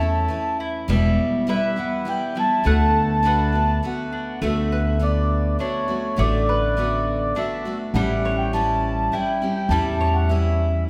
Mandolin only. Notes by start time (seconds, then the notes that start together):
Already playing: A3 E4 C#5 E5
0.60 E4
0.90 G3 E5
1.49 E4 B4 E5
2.37 E4
2.66 A3 F#5
3.25 D4 B4 F#5
4.12 D4
4.42 A3
4.72 B4
5.60 D4
6.19 A3
6.49 B4
7.36 D4
7.96 G3
8.25 C#5
9.13 E4
9.71 G3
10.01 C#5